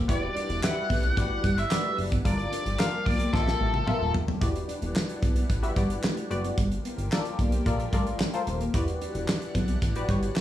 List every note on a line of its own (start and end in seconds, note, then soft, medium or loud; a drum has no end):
0.08 0.30 E1 loud
0.08 2.23 E3 medium
0.08 2.23 G3 medium
0.08 2.23 D4 medium
0.08 0.18 E4 medium
0.08 0.49 F#4 medium
0.08 0.49 G4 medium
0.08 0.49 B4 medium
0.08 0.49 D5 loud
0.08 0.65 D5 medium
0.08 2.23 F#5 medium
0.08 kick loud
0.08 closed hi-hat loud
0.22 muted clean electric guitar stroke soft
0.35 0.45 D4 medium
0.35 closed hi-hat medium
0.49 0.60 E1 loud
0.49 closed hi-hat medium
0.63 1.03 F#4 medium
0.63 1.03 G4 medium
0.63 1.03 B4 medium
0.63 1.04 E5 loud
0.63 1.17 F#5 loud
0.63 muted clean electric guitar stroke medium
0.63 snare loud
0.63 clap loud
0.63 closed hi-hat loud
0.89 1.12 B1 medium
0.89 0.99 B3 medium
0.89 kick loud
0.89 open hi-hat medium
1.03 1.13 B3 medium
1.03 closed hi-hat medium
1.17 1.39 A1 loud
1.17 1.57 F#4 medium
1.17 1.57 G4 medium
1.17 1.58 B4 medium
1.17 1.58 D5 medium
1.17 1.58 F#5 loud
1.17 kick loud
1.17 closed hi-hat medium
1.44 1.65 G1 loud
1.44 1.53 G3 medium
1.44 kick loud
1.44 closed hi-hat medium
1.58 1.96 E5 medium
1.58 closed hi-hat medium
1.71 1.80 A3 medium
1.71 2.11 F#4 medium
1.71 2.11 G4 medium
1.71 2.12 B4 medium
1.71 2.12 D5 medium
1.71 snare loud
1.71 clap medium
1.71 closed hi-hat loud
1.98 2.19 F#1 medium
1.98 muted clean electric guitar stroke soft
1.98 open hi-hat medium
2.11 2.21 B3 medium
2.11 kick loud
2.11 closed hi-hat medium
2.25 2.47 G1 loud
2.25 4.39 F3 medium
2.25 2.34 G3 medium
2.25 4.39 G3 medium
2.25 4.39 A#3 medium
2.25 2.65 F4 medium
2.25 4.39 G4 medium
2.25 2.65 A4 medium
2.25 2.66 A#4 medium
2.25 2.66 D5 loud
2.25 2.81 D5 loud
2.25 kick loud
2.25 closed hi-hat loud
2.38 muted clean electric guitar stroke soft
2.38 closed hi-hat soft
2.52 2.61 D4 medium
2.52 closed hi-hat medium
2.66 2.76 G1 medium
2.66 closed hi-hat medium
2.79 3.20 F4 medium
2.79 3.20 A4 medium
2.79 3.20 A#4 medium
2.79 3.20 D5 medium
2.79 3.04 F5 loud
2.79 muted clean electric guitar stroke soft
2.79 snare loud
2.79 clap medium
2.79 closed hi-hat medium
3.06 3.28 B1 medium
3.06 3.16 A#3 medium
3.06 3.34 D5 loud
3.06 kick medium
3.06 open hi-hat medium
3.20 3.29 A#3 medium
3.20 closed hi-hat medium
3.33 3.55 A#1 loud
3.33 3.74 A#3 medium
3.33 3.73 F4 medium
3.33 4.10 A4 medium
3.33 3.73 A4 medium
3.33 3.40 D#5 medium
3.33 kick loud
3.33 snare medium
3.40 3.77 E5 medium
3.48 snare medium
3.60 3.82 A1 medium
3.60 3.70 A3 medium
3.74 high tom medium
3.87 3.96 B3 medium
3.87 4.27 F4 medium
3.87 4.27 A4 medium
3.87 4.28 A#4 medium
3.87 4.28 E5 medium
3.87 mid tom medium
4.01 4.12 D#1 loud
4.14 4.25 E1 loud
4.14 muted clean electric guitar stroke medium
4.14 floor tom loud
4.27 4.38 D#1 medium
4.27 4.37 A3 medium
4.27 floor tom loud
4.41 4.63 E1 loud
4.41 6.55 E3 medium
4.41 6.56 G3 medium
4.41 6.56 D4 medium
4.41 4.51 E4 medium
4.41 5.22 F#4 medium
4.41 5.22 G4 medium
4.41 5.22 B4 medium
4.41 5.22 D5 medium
4.41 6.56 F#5 medium
4.41 kick loud
4.41 closed hi-hat medium
4.55 muted clean electric guitar stroke soft
4.55 closed hi-hat medium
4.68 4.77 D4 medium
4.68 closed hi-hat medium
4.82 4.93 E1 loud
4.82 closed hi-hat soft
4.95 muted clean electric guitar stroke soft
4.95 snare loud
4.95 clap medium
5.09 closed hi-hat medium
5.22 5.44 B1 medium
5.22 5.32 B3 medium
5.22 kick medium
5.22 closed hi-hat medium
5.36 5.45 B3 medium
5.36 closed hi-hat medium
5.50 5.71 A1 medium
5.50 kick loud
5.50 closed hi-hat medium
5.63 5.73 F#4 medium
5.63 5.73 G4 medium
5.63 5.73 B4 medium
5.63 5.73 E5 loud
5.63 closed hi-hat medium
5.76 5.98 G1 loud
5.76 5.86 G3 medium
5.76 6.17 F#4 medium
5.76 6.17 G4 medium
5.76 6.17 B4 medium
5.76 6.17 D5 medium
5.76 kick loud
5.76 closed hi-hat medium
5.90 closed hi-hat medium
6.03 6.13 A3 medium
6.03 snare loud
6.03 clap medium
6.17 closed hi-hat medium
6.30 6.52 F#1 medium
6.30 6.57 F#4 loud
6.30 6.58 G4 medium
6.30 6.58 B4 medium
6.30 6.58 D5 loud
6.30 muted clean electric guitar stroke soft
6.30 closed hi-hat medium
6.44 6.54 B3 medium
6.44 closed hi-hat medium
6.58 6.79 G1 loud
6.58 8.72 F3 medium
6.58 6.67 G3 medium
6.58 8.72 G3 medium
6.58 8.72 A#3 medium
6.58 8.72 G4 medium
6.58 kick loud
6.58 closed hi-hat medium
6.71 muted clean electric guitar stroke soft
6.71 closed hi-hat medium
6.85 6.94 B3 medium
6.85 closed hi-hat medium
6.98 7.09 G1 medium
6.98 closed hi-hat medium
7.12 7.52 F4 medium
7.12 7.52 A4 medium
7.12 7.52 A#4 medium
7.12 7.53 D5 loud
7.12 muted clean electric guitar stroke soft
7.12 snare loud
7.12 clap medium
7.25 closed hi-hat medium
7.39 7.60 B1 medium
7.39 7.48 A#3 medium
7.39 kick medium
7.39 closed hi-hat medium
7.52 7.62 A#3 medium
7.52 closed hi-hat medium
7.66 7.87 A#1 loud
7.66 7.86 F4 loud
7.66 7.86 A4 medium
7.66 7.86 A#4 medium
7.66 7.86 D5 loud
7.66 kick loud
7.66 closed hi-hat medium
7.80 closed hi-hat medium
7.93 8.14 A1 medium
7.93 8.02 G3 medium
7.93 8.23 F4 medium
7.93 8.23 A4 medium
7.93 8.24 A#4 medium
7.93 8.24 D5 loud
7.93 kick medium
7.93 closed hi-hat medium
8.07 closed hi-hat medium
8.20 8.30 A3 medium
8.20 snare loud
8.20 clap medium
8.34 8.64 F4 medium
8.34 8.64 A4 medium
8.34 8.64 A#4 medium
8.34 8.64 C5 loud
8.34 closed hi-hat medium
8.47 8.68 D#1 loud
8.47 muted clean electric guitar stroke soft
8.47 closed hi-hat medium
8.61 8.70 A#3 medium
8.61 closed hi-hat medium
8.74 8.95 E1 loud
8.74 10.41 E3 medium
8.74 10.41 G3 medium
8.74 10.41 D4 medium
8.74 8.83 E4 medium
8.74 9.55 F#4 medium
8.74 9.55 G4 medium
8.74 9.55 B4 medium
8.74 9.55 D5 loud
8.74 10.41 F#5 medium
8.74 kick loud
8.74 closed hi-hat medium
8.88 muted clean electric guitar stroke soft
8.88 closed hi-hat medium
9.01 9.10 D4 medium
9.01 closed hi-hat medium
9.15 9.25 E1 medium
9.15 closed hi-hat medium
9.28 muted clean electric guitar stroke soft
9.28 snare loud
9.28 clap medium
9.42 closed hi-hat medium
9.55 9.76 B1 medium
9.55 9.64 B3 medium
9.55 kick medium
9.55 closed hi-hat medium
9.68 9.78 B3 medium
9.68 closed hi-hat medium
9.82 10.03 A1 loud
9.82 kick loud
9.82 closed hi-hat medium
9.96 10.06 F#4 medium
9.96 10.06 G4 medium
9.96 10.06 B4 medium
9.96 10.06 D5 loud
9.96 closed hi-hat medium
10.09 10.30 G1 loud
10.09 10.18 G3 medium
10.09 10.41 F#4 medium
10.09 10.41 G4 medium
10.09 10.41 B4 medium
10.09 10.41 C#5 loud
10.09 kick medium
10.09 closed hi-hat medium
10.23 closed hi-hat medium
10.36 10.41 A3 medium
10.36 snare loud
10.36 clap medium